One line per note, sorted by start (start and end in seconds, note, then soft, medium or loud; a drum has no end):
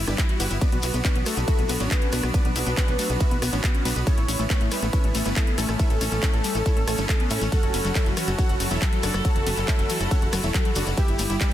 0.00 0.58 G3 medium
0.00 7.48 B3 medium
0.00 0.58 E4 medium
0.07 0.15 G1 medium
0.07 0.17 D4 medium
0.07 0.14 E4 medium
0.07 0.17 G4 medium
0.07 0.17 B4 medium
0.07 0.17 D5 loud
0.07 cross-stick medium
0.07 closed hi-hat medium
0.07 shekere medium
0.18 0.28 E4 medium
0.18 kick loud
0.18 clap loud
0.18 closed hi-hat medium
0.18 ride medium
0.18 shekere soft
0.29 0.38 E4 medium
0.29 0.39 F#4 medium
0.29 closed hi-hat medium
0.40 0.48 G1 loud
0.40 0.49 E4 medium
0.40 0.49 F#4 medium
0.40 0.49 G4 medium
0.40 0.49 B4 medium
0.40 0.49 F#5 medium
0.40 open hi-hat loud
0.40 ride medium
0.40 shekere loud
0.50 0.59 G1 medium
0.50 0.60 E4 medium
0.50 0.57 E4 medium
0.50 closed hi-hat medium
0.50 shekere medium
0.61 4.03 F#3 medium
0.61 0.68 B3 loud
0.61 0.71 D4 medium
0.61 4.03 D4 medium
0.61 0.71 F#4 medium
0.61 0.71 B4 medium
0.61 1.18 B4 loud
0.61 0.71 D5 loud
0.61 kick loud
0.61 closed hi-hat medium
0.61 ride medium
0.61 shekere soft
0.72 0.80 B1 medium
0.72 0.79 B3 medium
0.72 0.82 F#4 medium
0.72 closed hi-hat medium
0.82 0.91 B1 loud
0.82 0.87 E4 medium
0.82 0.92 F#4 medium
0.82 open hi-hat loud
0.82 ride medium
0.82 shekere loud
0.94 1.02 B1 medium
0.94 1.00 B3 medium
0.94 1.03 F#4 medium
0.94 closed hi-hat medium
0.94 shekere soft
1.05 1.14 B3 medium
1.05 1.14 C#4 medium
1.05 1.14 D4 medium
1.05 1.14 F#4 medium
1.05 1.14 C#5 loud
1.05 kick loud
1.05 clap loud
1.05 closed hi-hat medium
1.05 ride medium
1.05 shekere soft
1.15 1.23 B1 medium
1.15 1.25 B3 loud
1.15 1.25 F#4 medium
1.15 closed hi-hat medium
1.26 1.36 A3 medium
1.26 1.36 F#4 medium
1.26 1.82 A4 loud
1.26 cross-stick medium
1.26 open hi-hat loud
1.26 ride medium
1.26 shekere loud
1.37 1.45 B1 medium
1.37 1.43 B3 medium
1.37 1.46 F#4 medium
1.37 closed hi-hat medium
1.37 shekere medium
1.48 1.57 E4 medium
1.48 1.54 F#4 loud
1.48 1.57 F#4 medium
1.48 1.57 B4 medium
1.48 1.57 E5 medium
1.48 kick loud
1.48 closed hi-hat medium
1.48 ride medium
1.48 shekere soft
1.58 1.67 B1 medium
1.58 1.65 B3 medium
1.58 1.68 F#4 medium
1.58 closed hi-hat medium
1.69 1.77 B1 loud
1.69 1.79 B3 loud
1.69 1.79 F#4 medium
1.69 open hi-hat loud
1.69 ride medium
1.69 shekere medium
1.80 1.88 A1 medium
1.80 1.86 B3 medium
1.80 1.90 C#4 medium
1.80 1.90 D4 medium
1.80 1.90 F#4 medium
1.80 1.90 C#5 loud
1.80 closed hi-hat medium
1.80 shekere medium
1.91 2.00 B3 medium
1.91 2.00 F#4 medium
1.91 3.98 B4 loud
1.91 kick loud
1.91 clap loud
1.91 closed hi-hat medium
1.91 ride medium
1.91 shekere soft
2.02 2.11 C#4 medium
2.02 2.11 F#4 medium
2.02 closed hi-hat medium
2.12 2.21 B1 loud
2.12 2.22 B3 medium
2.12 2.22 D4 medium
2.12 2.22 F#4 medium
2.12 2.22 B4 medium
2.12 cross-stick medium
2.12 open hi-hat loud
2.12 ride medium
2.12 shekere medium
2.23 2.31 B1 medium
2.23 2.30 B3 medium
2.23 2.33 F#4 medium
2.23 cross-stick medium
2.23 closed hi-hat medium
2.23 shekere soft
2.34 2.40 B3 loud
2.34 2.44 D4 medium
2.34 2.44 F#4 medium
2.34 2.44 B4 medium
2.34 2.44 D5 loud
2.34 kick loud
2.34 closed hi-hat medium
2.34 ride medium
2.34 shekere soft
2.45 2.53 B1 medium
2.45 2.51 B3 medium
2.45 2.54 F#4 medium
2.45 closed hi-hat medium
2.56 2.64 B1 loud
2.56 2.59 E4 medium
2.56 2.65 F#4 medium
2.56 open hi-hat loud
2.56 ride medium
2.56 shekere medium
2.66 2.74 B1 medium
2.66 2.73 B3 medium
2.66 2.76 F#4 medium
2.66 closed hi-hat medium
2.66 shekere medium
2.77 2.87 B3 medium
2.77 2.87 C#4 medium
2.77 2.87 D4 medium
2.77 2.87 F#4 medium
2.77 2.87 C#5 loud
2.77 kick loud
2.77 clap loud
2.77 closed hi-hat medium
2.77 ride medium
2.77 shekere soft
2.88 2.96 B1 medium
2.88 2.97 B3 loud
2.88 2.98 F#4 medium
2.88 closed hi-hat medium
2.99 3.08 A3 medium
2.99 3.08 F#4 medium
2.99 open hi-hat loud
2.99 ride medium
2.99 shekere loud
3.10 3.18 B1 medium
3.10 3.16 B3 medium
3.10 3.19 F#4 medium
3.10 closed hi-hat medium
3.10 shekere soft
3.20 3.30 E4 medium
3.20 3.27 F#4 loud
3.20 3.30 F#4 medium
3.20 3.30 B4 medium
3.20 3.30 E5 medium
3.20 kick loud
3.20 closed hi-hat medium
3.20 ride medium
3.20 shekere soft
3.31 3.39 B1 medium
3.31 3.38 B3 medium
3.31 3.41 F#4 medium
3.31 closed hi-hat medium
3.42 3.50 B1 medium
3.42 3.51 B3 loud
3.42 3.51 F#4 medium
3.42 cross-stick medium
3.42 open hi-hat loud
3.42 ride medium
3.42 shekere medium
3.52 3.61 A1 medium
3.52 3.59 B3 medium
3.52 3.62 C#4 medium
3.52 3.62 D4 medium
3.52 3.62 F#4 medium
3.52 3.62 C#5 loud
3.52 closed hi-hat medium
3.52 shekere medium
3.63 3.73 B3 medium
3.63 kick loud
3.63 clap loud
3.63 closed hi-hat medium
3.63 ride medium
3.63 shekere soft
3.74 3.84 C#4 medium
3.74 3.84 F#4 medium
3.74 closed hi-hat medium
3.85 3.93 B1 loud
3.85 3.95 B3 medium
3.85 3.95 D4 medium
3.85 3.95 F#4 medium
3.85 3.95 B4 medium
3.85 open hi-hat loud
3.85 ride medium
3.85 shekere loud
3.96 4.04 B1 medium
3.96 4.02 B3 medium
3.96 4.05 F#4 medium
3.96 shekere medium
4.07 4.13 A3 loud
4.07 7.49 A3 medium
4.07 4.16 C#4 medium
4.07 10.93 C#4 loud
4.07 4.16 E4 medium
4.07 4.16 A4 medium
4.07 4.16 C#5 loud
4.07 4.63 C#5 loud
4.07 kick loud
4.07 closed hi-hat medium
4.07 ride medium
4.07 shekere soft
4.17 4.25 A1 medium
4.17 4.24 A3 medium
4.17 4.27 E4 medium
4.17 closed hi-hat medium
4.28 4.36 A1 medium
4.28 4.32 C#4 medium
4.28 4.38 E4 medium
4.28 open hi-hat loud
4.28 ride medium
4.28 shekere loud
4.39 4.47 A1 medium
4.39 4.45 A3 medium
4.39 4.49 E4 medium
4.39 closed hi-hat medium
4.39 shekere medium
4.50 4.59 A3 medium
4.50 4.59 B3 medium
4.50 4.59 C#4 medium
4.50 4.59 E4 medium
4.50 4.59 B4 loud
4.50 kick loud
4.50 clap loud
4.50 closed hi-hat medium
4.50 ride medium
4.50 shekere soft
4.61 4.69 A1 medium
4.61 4.70 A3 loud
4.61 4.70 E4 medium
4.61 closed hi-hat medium
4.71 4.81 G3 medium
4.71 4.81 E4 medium
4.71 5.28 B4 loud
4.71 cross-stick medium
4.71 open hi-hat loud
4.71 ride medium
4.71 shekere loud
4.82 4.90 A1 medium
4.82 4.89 A3 medium
4.82 4.92 E4 medium
4.82 closed hi-hat medium
4.82 shekere medium
4.93 5.03 C#4 medium
4.93 5.03 E4 medium
4.93 4.99 E4 loud
4.93 5.03 A4 medium
4.93 5.03 C#5 medium
4.93 kick loud
4.93 closed hi-hat medium
4.93 ride medium
4.93 shekere soft
5.04 5.12 A1 medium
5.04 5.10 A3 medium
5.04 5.13 E4 medium
5.04 closed hi-hat medium
5.15 5.23 A1 medium
5.15 5.24 A3 loud
5.15 5.24 E4 medium
5.15 open hi-hat loud
5.15 ride medium
5.15 shekere loud
5.25 5.34 G1 medium
5.25 5.32 A3 medium
5.25 5.35 B3 medium
5.25 5.35 C#4 medium
5.25 5.35 E4 medium
5.25 5.35 B4 loud
5.25 closed hi-hat medium
5.25 shekere medium
5.36 5.46 A3 medium
5.36 5.46 E4 medium
5.36 7.44 A4 loud
5.36 kick loud
5.36 clap loud
5.36 closed hi-hat medium
5.36 ride medium
5.36 shekere soft
5.47 5.57 B3 medium
5.47 5.57 E4 medium
5.47 closed hi-hat medium
5.58 5.66 A1 loud
5.58 5.67 A3 medium
5.58 5.67 C#4 medium
5.58 5.67 E4 medium
5.58 5.67 A4 medium
5.58 cross-stick medium
5.58 open hi-hat loud
5.58 ride medium
5.58 shekere loud
5.69 5.77 A1 medium
5.69 5.75 A3 medium
5.69 5.78 E4 medium
5.69 cross-stick medium
5.69 closed hi-hat medium
5.69 shekere medium
5.79 5.86 A3 loud
5.79 5.89 E4 medium
5.79 5.89 B4 medium
5.79 5.89 C#5 medium
5.79 5.89 E5 loud
5.79 kick loud
5.79 closed hi-hat medium
5.79 ride medium
5.79 shekere soft
5.90 5.98 A1 medium
5.90 5.97 A3 medium
5.90 6.00 A4 medium
5.90 closed hi-hat medium
6.01 6.09 A1 loud
6.01 6.05 C#4 medium
6.01 6.11 A4 medium
6.01 open hi-hat loud
6.01 ride medium
6.01 shekere loud
6.12 6.20 A1 medium
6.12 6.18 A3 medium
6.12 6.21 A4 medium
6.12 closed hi-hat medium
6.12 shekere medium
6.22 6.32 A3 medium
6.22 6.32 C#4 medium
6.22 6.32 E4 medium
6.22 6.32 A4 medium
6.22 6.32 C#5 loud
6.22 kick loud
6.22 clap loud
6.22 closed hi-hat medium
6.22 ride medium
6.22 shekere soft
6.33 6.41 A1 medium
6.33 6.43 A3 loud
6.33 6.43 A4 medium
6.33 closed hi-hat medium
6.44 6.54 G3 medium
6.44 6.54 A4 medium
6.44 open hi-hat loud
6.44 ride medium
6.44 shekere loud
6.55 6.63 A1 medium
6.55 6.61 A3 medium
6.55 6.65 A4 medium
6.55 closed hi-hat soft
6.55 shekere medium
6.66 6.75 C#4 medium
6.66 6.72 E4 loud
6.66 6.75 E4 medium
6.66 6.75 A4 medium
6.66 6.75 C#5 loud
6.66 kick loud
6.66 closed hi-hat medium
6.66 ride medium
6.66 shekere soft
6.77 6.85 A1 medium
6.77 6.83 A3 medium
6.77 6.86 A4 medium
6.77 closed hi-hat medium
6.87 6.95 A1 loud
6.87 6.97 A3 loud
6.87 6.97 A4 medium
6.87 cross-stick medium
6.87 open hi-hat loud
6.87 ride medium
6.87 shekere medium
6.98 7.06 G1 medium
6.98 7.04 A3 medium
6.98 7.08 A3 medium
6.98 7.08 C#4 medium
6.98 7.08 E4 medium
6.98 7.08 A4 loud
6.98 closed hi-hat medium
6.98 shekere medium
7.09 7.18 A3 medium
7.09 7.18 A4 medium
7.09 kick loud
7.09 clap loud
7.09 closed hi-hat medium
7.09 ride medium
7.09 shekere soft
7.20 7.29 B3 medium
7.20 7.29 A4 medium
7.20 closed hi-hat medium
7.30 7.38 A2 medium
7.30 7.40 A3 medium
7.30 7.40 C#4 medium
7.30 7.40 E4 medium
7.30 7.40 A4 medium
7.30 open hi-hat loud
7.30 ride medium
7.30 shekere loud
7.41 7.49 A1 medium
7.41 7.48 A3 medium
7.41 7.51 A4 medium
7.41 closed hi-hat soft
7.41 shekere medium
7.52 7.58 F#3 loud
7.52 10.94 F#3 medium
7.52 11.53 E4 medium
7.52 7.62 F#4 medium
7.52 10.94 A4 loud
7.52 7.62 A4 medium
7.52 8.08 A4 loud
7.52 7.62 C#5 medium
7.52 7.62 F#5 loud
7.52 kick loud
7.52 closed hi-hat medium
7.52 ride medium
7.52 shekere soft
7.63 7.71 F#1 medium
7.63 7.72 F#4 medium
7.63 7.69 F#4 medium
7.63 closed hi-hat medium
7.74 7.82 F#1 medium
7.74 7.78 B3 medium
7.74 7.83 F#4 medium
7.74 open hi-hat loud
7.74 ride medium
7.74 shekere loud
7.85 7.92 F#1 medium
7.85 7.91 F#3 medium
7.85 7.94 F#4 medium
7.85 closed hi-hat medium
7.85 shekere medium
7.95 8.05 F#3 medium
7.95 8.05 E4 medium
7.95 8.05 A4 medium
7.95 8.05 C#5 medium
7.95 8.05 E5 loud
7.95 kick loud
7.95 clap loud
7.95 closed hi-hat medium
7.95 ride medium
7.95 shekere soft
8.06 8.14 F#1 medium
8.06 8.16 F#3 loud
8.06 8.16 F#4 medium
8.06 closed hi-hat medium
8.17 8.26 E3 medium
8.17 8.73 F#4 loud
8.17 8.26 F#4 medium
8.17 cross-stick medium
8.17 open hi-hat loud
8.17 ride medium
8.17 shekere medium
8.28 8.36 F#1 medium
8.28 8.34 F#4 medium
8.28 8.37 F#4 medium
8.28 closed hi-hat medium
8.28 shekere medium
8.38 8.45 C#4 loud
8.38 8.48 F#4 medium
8.38 8.48 A4 medium
8.38 8.48 C#5 medium
8.38 8.48 F#5 loud
8.38 kick loud
8.38 closed hi-hat medium
8.38 ride medium
8.38 shekere soft
8.49 8.57 F#1 medium
8.49 8.56 F#4 medium
8.49 8.59 F#4 medium
8.49 closed hi-hat medium
8.60 8.68 F#1 medium
8.60 8.69 F#3 loud
8.60 8.70 F#4 medium
8.60 open hi-hat loud
8.60 ride medium
8.60 shekere medium
8.70 8.79 E1 medium
8.70 8.77 F#3 medium
8.70 8.80 E4 medium
8.70 8.80 A4 medium
8.70 8.80 C#5 medium
8.70 8.80 E5 loud
8.70 closed hi-hat medium
8.70 shekere medium
8.82 8.91 F#3 medium
8.82 10.89 A4 loud
8.82 kick loud
8.82 clap loud
8.82 closed hi-hat medium
8.82 ride medium
8.82 shekere soft
8.93 8.99 F#3 loud
8.93 9.02 F#4 medium
8.93 closed hi-hat medium
9.03 9.11 F#1 loud
9.03 9.13 D4 medium
9.03 9.13 F#4 medium
9.03 9.13 A4 medium
9.03 9.13 D5 medium
9.03 cross-stick medium
9.03 open hi-hat loud
9.03 ride medium
9.03 shekere medium
9.14 9.22 F#1 medium
9.14 9.20 F#4 medium
9.14 9.24 F#4 medium
9.14 cross-stick medium
9.14 closed hi-hat soft
9.14 shekere medium
9.24 9.31 F#3 loud
9.24 9.34 F#4 medium
9.24 9.34 A4 medium
9.24 9.34 C#5 medium
9.24 9.34 F#5 loud
9.24 kick loud
9.24 closed hi-hat medium
9.24 ride medium
9.24 shekere soft
9.36 9.44 F#1 medium
9.36 9.42 F#4 medium
9.36 9.45 F#4 medium
9.36 closed hi-hat medium
9.46 9.54 F#1 loud
9.46 9.50 B3 medium
9.46 9.56 F#4 medium
9.46 open hi-hat loud
9.46 ride medium
9.46 shekere medium
9.57 9.65 F#1 medium
9.57 9.63 F#3 medium
9.57 9.67 F#4 medium
9.57 closed hi-hat medium
9.57 shekere soft
9.67 9.77 F#3 medium
9.67 9.78 E4 medium
9.67 9.78 A4 medium
9.67 9.78 C#5 medium
9.67 9.78 E5 loud
9.67 kick loud
9.67 clap loud
9.67 closed hi-hat medium
9.67 ride medium
9.67 shekere soft
9.79 9.87 F#1 medium
9.79 9.88 F#3 loud
9.79 9.88 F#4 medium
9.79 closed hi-hat medium
9.89 9.99 E3 medium
9.89 9.99 F#4 medium
9.89 open hi-hat loud
9.89 ride medium
9.89 shekere medium
10.00 10.08 F#1 medium
10.00 10.07 F#4 medium
10.00 10.10 F#4 medium
10.00 closed hi-hat medium
10.00 shekere medium
10.11 10.17 C#4 loud
10.11 10.21 F#4 medium
10.11 10.21 A4 medium
10.11 10.21 C#5 medium
10.11 10.21 F#5 medium
10.11 kick loud
10.11 closed hi-hat medium
10.11 ride medium
10.11 shekere soft
10.22 10.30 F#1 medium
10.22 10.28 F#4 medium
10.22 10.31 F#4 medium
10.22 closed hi-hat medium
10.33 10.41 F#1 loud
10.33 10.42 F#3 loud
10.33 10.42 F#4 medium
10.33 cross-stick medium
10.33 open hi-hat loud
10.33 ride medium
10.33 shekere medium
10.43 10.51 E1 medium
10.43 10.50 F#3 medium
10.43 10.53 E4 medium
10.43 10.53 A4 medium
10.43 10.53 C#5 medium
10.43 10.53 E5 loud
10.43 closed hi-hat medium
10.43 shekere medium
10.54 10.64 F#3 medium
10.54 10.64 F#4 medium
10.54 kick loud
10.54 clap loud
10.54 closed hi-hat medium
10.54 ride medium
10.54 shekere soft
10.65 10.71 F#3 loud
10.65 10.75 F#4 medium
10.65 closed hi-hat medium
10.75 10.84 F#1 loud
10.75 10.85 D4 medium
10.75 10.85 F#4 medium
10.75 10.85 A4 medium
10.75 10.85 D5 medium
10.75 open hi-hat loud
10.75 ride medium
10.75 shekere loud
10.87 10.95 F#1 medium
10.87 10.93 F#4 medium
10.87 10.96 F#4 medium
10.87 closed hi-hat soft
10.87 shekere medium
10.97 11.53 G3 medium
10.97 11.53 B3 medium
10.97 11.04 E4 loud
10.97 11.07 E4 medium
10.97 11.53 G4 loud
10.97 11.07 G4 medium
10.97 11.07 B4 medium
10.97 11.07 E5 loud
10.97 kick loud
10.97 closed hi-hat medium
10.97 ride medium
10.97 shekere soft
11.08 11.16 G1 medium
11.08 11.15 E4 medium
11.08 11.18 E4 medium
11.08 closed hi-hat medium
11.19 11.27 G1 loud
11.19 11.23 A3 medium
11.19 11.29 E4 medium
11.19 open hi-hat loud
11.19 ride medium
11.19 shekere medium
11.30 11.38 G1 medium
11.30 11.36 E4 medium
11.30 11.39 E4 medium
11.30 closed hi-hat medium
11.30 shekere soft
11.41 11.50 D4 medium
11.41 11.50 E4 medium
11.41 11.50 G4 medium
11.41 11.50 B4 medium
11.41 11.50 D5 loud
11.41 kick loud
11.41 clap loud
11.41 closed hi-hat medium
11.41 ride medium
11.41 shekere soft